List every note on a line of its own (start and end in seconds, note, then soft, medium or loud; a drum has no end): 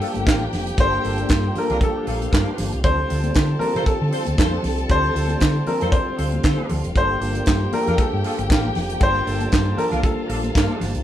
0.00 2.80 F3 medium
0.00 0.16 F3 medium
0.00 6.91 G3 medium
0.00 0.78 A#3 medium
0.00 2.80 A#3 medium
0.00 0.16 A#3 medium
0.00 0.79 D4 medium
0.00 0.16 D4 medium
0.00 0.79 F4 medium
0.00 2.02 G4 loud
0.00 2.80 G4 medium
0.00 0.22 A4 medium
0.00 0.80 A4 medium
0.00 0.17 A4 medium
0.00 2.02 G5 loud
0.00 open hi-hat medium
0.14 0.24 G1 loud
0.14 muted clean electric guitar stroke soft
0.14 closed hi-hat medium
0.14 high conga medium
0.26 0.45 A1 medium
0.26 0.42 D4 medium
0.26 0.42 F4 medium
0.26 0.42 A#4 medium
0.26 muted clean electric guitar stroke soft
0.26 kick loud
0.26 snare loud
0.26 clap loud
0.26 closed hi-hat medium
0.26 muted conga soft
0.41 0.53 F3 medium
0.41 0.53 A#3 medium
0.41 0.53 D4 medium
0.41 0.53 A#4 medium
0.41 muted conga soft
0.41 high conga medium
0.52 0.71 F1 loud
0.52 snare soft
0.52 open hi-hat medium
0.52 low conga medium
0.67 muted clean electric guitar stroke medium
0.67 closed hi-hat medium
0.78 0.96 G1 loud
0.78 0.93 F3 medium
0.78 0.96 A#3 medium
0.78 0.94 A#3 medium
0.78 0.96 D4 medium
0.78 0.94 D4 loud
0.78 0.96 F4 medium
0.78 0.97 A4 medium
0.78 1.58 C5 loud
0.78 kick loud
0.78 closed hi-hat medium
0.78 muted conga soft
0.82 0.94 A4 loud
0.92 muted clean electric guitar stroke medium
0.92 muted conga soft
1.04 1.23 G1 loud
1.04 1.16 F3 medium
1.04 1.38 A#3 medium
1.04 1.17 A#3 medium
1.04 1.38 D4 medium
1.04 1.39 F4 medium
1.04 1.39 A4 medium
1.04 open hi-hat medium
1.09 1.17 D4 medium
1.09 1.17 A4 medium
1.18 1.28 A4 medium
1.18 closed hi-hat soft
1.18 high conga loud
1.22 1.29 F3 soft
1.22 1.29 A#3 medium
1.22 1.29 D4 medium
1.29 1.48 G2 loud
1.29 muted clean electric guitar stroke soft
1.29 kick loud
1.29 snare loud
1.29 clap medium
1.29 closed hi-hat medium
1.46 muted clean electric guitar stroke medium
1.54 1.71 F3 medium
1.54 2.23 A#3 medium
1.54 1.71 A#3 medium
1.54 2.23 D4 medium
1.54 2.24 F4 medium
1.54 2.24 A4 medium
1.54 1.81 A#4 medium
1.54 open hi-hat medium
1.54 high conga medium
1.54 low conga medium
1.58 1.71 D4 loud
1.58 1.71 A4 loud
1.70 1.78 C2 medium
1.70 1.80 F3 medium
1.70 1.80 A#3 medium
1.70 1.77 D4 loud
1.70 1.80 D4 medium
1.70 1.77 F4 loud
1.70 1.80 A4 medium
1.70 1.77 A#4 loud
1.70 closed hi-hat soft
1.70 high conga medium
1.70 low conga medium
1.81 2.30 A4 medium
1.81 kick loud
1.81 closed hi-hat medium
1.81 muted conga soft
1.96 2.07 F3 medium
1.96 2.08 A#3 medium
1.96 2.08 D4 medium
1.96 2.07 A4 medium
2.06 2.26 A#1 loud
2.06 2.19 F3 medium
2.06 2.19 A#3 medium
2.06 2.16 D4 medium
2.06 2.19 D4 medium
2.06 2.16 F4 medium
2.06 2.82 F4 medium
2.06 2.16 A4 medium
2.06 2.82 F5 medium
2.06 open hi-hat medium
2.10 2.20 A#4 medium
2.22 closed hi-hat medium
2.22 high conga medium
2.32 2.43 G2 loud
2.32 2.66 D4 loud
2.32 2.66 F4 medium
2.32 2.66 A#4 loud
2.32 muted clean electric guitar stroke soft
2.32 kick loud
2.32 snare loud
2.32 clap loud
2.32 closed hi-hat medium
2.32 muted conga soft
2.47 2.58 F3 medium
2.47 2.59 A#3 medium
2.47 2.59 D4 medium
2.47 2.59 A4 medium
2.47 muted conga soft
2.47 high conga medium
2.58 2.69 G1 loud
2.58 2.70 F3 medium
2.58 2.70 A#3 medium
2.58 2.71 D4 medium
2.58 2.71 A4 medium
2.58 snare soft
2.58 open hi-hat medium
2.58 low conga medium
2.72 2.84 C2 medium
2.72 muted clean electric guitar stroke medium
2.72 closed hi-hat soft
2.83 3.03 D2 loud
2.83 6.92 D3 medium
2.83 2.98 F3 medium
2.83 6.92 F3 medium
2.83 3.01 C4 medium
2.83 6.92 C4 medium
2.83 2.99 C4 loud
2.83 2.98 D4 loud
2.83 3.02 E4 medium
2.83 3.02 F4 medium
2.83 6.14 A4 loud
2.83 3.02 A4 medium
2.83 2.98 A4 loud
2.83 3.63 C5 loud
2.83 6.14 A5 loud
2.83 kick loud
2.83 closed hi-hat medium
2.83 muted conga soft
2.99 muted clean electric guitar stroke soft
3.09 3.29 D2 loud
3.09 3.20 F3 medium
3.09 3.44 C4 medium
3.09 3.21 C4 medium
3.09 3.21 D4 medium
3.09 3.44 E4 medium
3.09 3.44 F4 medium
3.09 3.44 A4 medium
3.09 3.21 A4 medium
3.09 open hi-hat medium
3.23 3.33 F3 medium
3.23 3.33 C4 medium
3.23 3.33 D4 medium
3.23 3.32 C5 medium
3.23 closed hi-hat soft
3.23 high conga medium
3.34 3.54 D3 loud
3.34 muted clean electric guitar stroke soft
3.34 kick loud
3.34 snare loud
3.34 clap loud
3.34 closed hi-hat medium
3.50 muted clean electric guitar stroke soft
3.59 3.75 F3 medium
3.59 4.29 C4 medium
3.59 3.75 C4 loud
3.59 3.74 D4 medium
3.59 4.29 E4 medium
3.59 4.30 F4 medium
3.59 4.30 G4 medium
3.59 3.74 A4 medium
3.59 3.87 A#4 loud
3.59 open hi-hat medium
3.59 high conga medium
3.59 low conga medium
3.75 3.84 C3 medium
3.75 3.85 F3 medium
3.75 3.85 C4 medium
3.75 3.84 D4 medium
3.75 3.82 F4 loud
3.75 3.82 A4 loud
3.75 3.84 C5 medium
3.75 3.83 C5 loud
3.75 closed hi-hat soft
3.75 high conga medium
3.75 low conga medium
3.85 4.34 A4 medium
3.85 kick loud
3.85 closed hi-hat medium
3.85 muted conga soft
4.01 4.10 D3 loud
4.01 muted clean electric guitar stroke medium
4.11 4.26 F3 medium
4.11 4.26 C4 medium
4.11 4.25 D4 medium
4.11 4.21 F4 medium
4.11 4.21 A4 medium
4.11 4.25 A4 medium
4.11 4.21 C5 loud
4.11 open hi-hat medium
4.25 4.35 D2 loud
4.25 muted clean electric guitar stroke soft
4.25 closed hi-hat medium
4.25 high conga medium
4.37 4.57 F2 medium
4.37 4.54 F4 medium
4.37 4.54 A4 medium
4.37 4.54 C5 loud
4.37 kick loud
4.37 snare loud
4.37 clap loud
4.37 closed hi-hat medium
4.37 muted conga soft
4.51 4.64 F3 medium
4.51 4.64 C4 medium
4.51 4.64 D4 medium
4.51 4.64 C5 medium
4.51 muted conga soft
4.51 high conga medium
4.63 4.82 C2 loud
4.63 snare soft
4.63 open hi-hat medium
4.63 low conga medium
4.78 muted clean electric guitar stroke soft
4.78 closed hi-hat soft
4.88 5.08 D2 loud
4.88 5.05 F3 loud
4.88 5.07 C4 medium
4.88 5.04 C4 loud
4.88 5.04 D4 loud
4.88 5.07 E4 medium
4.88 5.07 F4 medium
4.88 5.08 A4 medium
4.88 5.03 A4 medium
4.88 5.70 C5 loud
4.88 kick loud
4.88 closed hi-hat medium
4.88 muted conga soft
5.03 muted conga soft
5.14 5.34 D2 medium
5.14 5.27 F3 medium
5.14 5.50 C4 medium
5.14 5.27 C4 medium
5.14 5.27 D4 medium
5.14 5.50 E4 medium
5.14 5.50 F4 medium
5.14 5.50 A4 medium
5.14 5.28 A4 medium
5.14 open hi-hat medium
5.28 5.40 C4 soft
5.28 5.39 D4 medium
5.28 5.39 A4 medium
5.28 closed hi-hat soft
5.28 high conga loud
5.32 5.40 F3 medium
5.40 5.60 D3 medium
5.40 kick loud
5.40 snare loud
5.40 clap loud
5.40 closed hi-hat medium
5.55 muted clean electric guitar stroke soft
5.55 muted conga soft
5.66 5.81 F3 medium
5.66 5.80 C4 medium
5.66 6.35 C4 medium
5.66 5.80 D4 loud
5.66 6.36 E4 medium
5.66 6.36 F4 medium
5.66 5.79 A4 medium
5.66 6.36 A4 medium
5.66 5.94 A#4 medium
5.66 open hi-hat medium
5.66 high conga medium
5.66 low conga medium
5.80 5.90 F2 medium
5.80 5.91 F3 medium
5.80 5.90 C4 medium
5.80 5.90 D4 medium
5.80 5.88 F4 loud
5.80 5.90 A4 medium
5.80 5.88 A4 loud
5.80 5.88 C5 loud
5.80 closed hi-hat soft
5.80 high conga medium
5.80 low conga medium
5.92 6.40 C5 medium
5.92 kick loud
5.92 closed hi-hat medium
5.92 muted conga soft
6.06 muted clean electric guitar stroke soft
6.16 6.37 D2 medium
6.16 6.32 F3 medium
6.16 6.32 C4 medium
6.16 6.31 D4 medium
6.16 6.27 F4 medium
6.16 6.94 F4 medium
6.16 6.27 A4 medium
6.16 6.27 C5 medium
6.16 6.31 C5 medium
6.16 6.94 F5 medium
6.16 open hi-hat medium
6.31 muted clean electric guitar stroke soft
6.31 closed hi-hat medium
6.31 high conga medium
6.42 6.55 D3 loud
6.42 6.78 F4 medium
6.42 6.78 A4 loud
6.42 6.78 C5 loud
6.42 muted clean electric guitar stroke soft
6.42 kick loud
6.42 snare loud
6.42 clap medium
6.42 closed hi-hat medium
6.57 6.67 F3 medium
6.57 6.68 C4 medium
6.57 6.69 D4 medium
6.57 6.69 A4 medium
6.57 muted conga soft
6.57 high conga medium
6.68 6.81 D2 medium
6.68 6.81 F3 medium
6.68 6.81 C4 medium
6.68 6.81 D4 medium
6.68 6.82 A4 medium
6.68 open hi-hat medium
6.68 low conga loud
6.84 6.93 F1 medium
6.84 muted clean electric guitar stroke medium
6.84 closed hi-hat medium
6.95 7.14 G1 loud
6.95 7.10 F3 medium
6.95 11.03 F3 medium
6.95 11.03 G3 medium
6.95 7.14 A#3 medium
6.95 7.11 A#3 medium
6.95 11.03 A#3 medium
6.95 7.10 D4 loud
6.95 7.14 D4 medium
6.95 7.14 F4 medium
6.95 10.00 G4 medium
6.95 9.00 G4 medium
6.95 7.09 A4 loud
6.95 7.14 A4 medium
6.95 7.76 C5 loud
6.95 10.00 G5 loud
6.95 kick loud
6.95 closed hi-hat medium
7.10 muted clean electric guitar stroke soft
7.10 muted conga soft
7.20 7.40 G1 loud
7.20 7.32 F3 medium
7.20 7.33 A#3 medium
7.20 7.56 A#3 medium
7.20 7.33 D4 medium
7.20 7.56 D4 medium
7.20 7.57 F4 medium
7.20 7.57 G4 medium
7.20 7.33 A4 medium
7.20 open hi-hat medium
7.34 7.45 F3 medium
7.34 7.45 A#3 medium
7.34 7.45 D4 medium
7.34 7.44 A#4 medium
7.34 closed hi-hat medium
7.34 high conga medium
7.46 7.66 G2 loud
7.46 kick loud
7.46 snare loud
7.46 clap medium
7.46 closed hi-hat medium
7.46 muted conga soft
7.60 muted clean electric guitar stroke medium
7.60 muted conga soft
7.72 7.87 F3 medium
7.72 7.87 A#3 loud
7.72 8.41 A#3 medium
7.72 8.42 D4 medium
7.72 7.86 D4 medium
7.72 8.42 F4 medium
7.72 7.80 G#4 medium
7.72 7.86 A4 medium
7.72 8.00 A#4 loud
7.72 open hi-hat medium
7.72 high conga medium
7.72 low conga medium
7.81 8.45 A4 medium
7.86 7.96 F2 medium
7.86 7.97 F3 medium
7.86 7.96 A#3 medium
7.86 7.94 D4 loud
7.86 7.96 D4 medium
7.86 7.94 F4 loud
7.86 7.96 A#4 medium
7.86 7.94 A#4 loud
7.86 closed hi-hat soft
7.86 high conga medium
7.86 low conga medium
7.98 8.47 A4 medium
7.98 muted fingered electric bass stroke medium
7.98 kick loud
7.98 closed hi-hat medium
8.12 8.21 G2 loud
8.12 muted clean electric guitar stroke soft
8.24 8.39 F3 medium
8.24 8.38 A#3 medium
8.24 8.33 D4 medium
8.24 8.38 D4 medium
8.24 8.33 F4 medium
8.24 8.33 A4 loud
8.24 8.37 A4 loud
8.24 open hi-hat medium
8.38 8.47 G1 loud
8.38 muted clean electric guitar stroke soft
8.38 closed hi-hat medium
8.38 high conga medium
8.50 8.69 A1 loud
8.50 8.66 D4 medium
8.50 8.66 F4 medium
8.50 8.66 A#4 loud
8.50 kick loud
8.50 snare loud
8.50 clap loud
8.50 closed hi-hat medium
8.50 muted conga soft
8.62 8.73 F3 medium
8.62 8.74 A#3 medium
8.62 8.74 D4 medium
8.62 8.75 A#4 medium
8.62 high conga medium
8.74 8.94 F1 loud
8.74 muted clean electric guitar stroke soft
8.74 snare soft
8.74 open hi-hat medium
8.74 low conga medium
8.88 muted clean electric guitar stroke soft
8.88 closed hi-hat medium
8.99 9.20 G1 loud
8.99 9.15 F3 medium
8.99 9.12 A#3 medium
8.99 9.19 A#3 medium
8.99 9.12 D4 medium
8.99 9.19 D4 medium
8.99 9.19 F4 medium
8.99 9.11 A4 medium
8.99 9.19 A4 medium
8.99 11.03 A5 medium
8.99 kick loud
8.99 closed hi-hat medium
8.99 muted conga soft
9.03 9.81 C5 loud
9.13 muted clean electric guitar stroke soft
9.13 muted conga soft
9.23 9.45 G1 medium
9.23 9.36 F3 medium
9.23 9.37 A#3 medium
9.23 9.62 A#3 medium
9.23 9.37 D4 medium
9.23 9.61 D4 medium
9.23 9.37 A4 medium
9.27 9.62 F4 medium
9.27 9.62 A4 medium
9.27 open hi-hat medium
9.38 9.48 F3 soft
9.38 9.48 A#3 medium
9.38 9.49 D4 medium
9.38 9.49 A4 medium
9.38 closed hi-hat medium
9.38 high conga medium
9.50 9.71 G2 loud
9.50 muted clean electric guitar stroke soft
9.50 kick loud
9.50 snare loud
9.50 closed hi-hat medium
9.54 clap medium
9.64 muted clean electric guitar stroke soft
9.64 muted conga soft
9.75 9.90 F3 medium
9.75 9.89 A#3 medium
9.75 10.46 A#3 medium
9.75 9.89 D4 loud
9.75 10.47 D4 medium
9.75 10.47 F4 medium
9.75 9.88 A4 loud
9.75 9.84 A#4 loud
9.75 open hi-hat medium
9.75 high conga medium
9.75 low conga medium
9.79 10.47 A4 medium
9.89 10.01 C2 medium
9.89 10.01 F3 medium
9.89 10.00 A#3 medium
9.89 10.00 D4 medium
9.89 9.99 D4 loud
9.89 9.99 F4 loud
9.89 10.00 A4 medium
9.89 9.99 A#4 loud
9.89 closed hi-hat soft
9.89 high conga soft
9.89 low conga medium
10.03 11.03 F4 medium
10.03 10.52 A4 medium
10.03 11.03 F5 loud
10.03 kick loud
10.03 closed hi-hat medium
10.16 muted clean electric guitar stroke soft
10.16 muted conga soft
10.26 10.48 A#1 medium
10.26 10.42 F3 medium
10.26 10.41 A#3 medium
10.26 10.40 D4 medium
10.26 10.38 D4 medium
10.26 10.38 F4 medium
10.26 10.38 A4 loud
10.26 10.40 A#4 medium
10.26 open hi-hat medium
10.41 muted clean electric guitar stroke medium
10.41 closed hi-hat medium
10.41 high conga medium
10.52 10.66 G2 loud
10.52 10.89 D4 loud
10.52 10.89 F4 medium
10.52 10.89 A#4 loud
10.52 muted clean electric guitar stroke soft
10.52 kick loud
10.56 snare loud
10.56 clap medium
10.56 closed hi-hat medium
10.66 10.76 F3 medium
10.66 10.77 A#3 medium
10.66 10.78 D4 medium
10.66 10.78 A4 medium
10.66 muted conga soft
10.66 high conga medium
10.78 10.91 G1 loud
10.78 10.91 F3 medium
10.78 10.91 A#3 medium
10.78 10.91 D4 medium
10.78 10.91 A4 medium
10.78 open hi-hat medium
10.78 low conga medium
10.82 snare soft
10.93 11.03 C2 loud
10.93 muted clean electric guitar stroke soft
10.93 closed hi-hat medium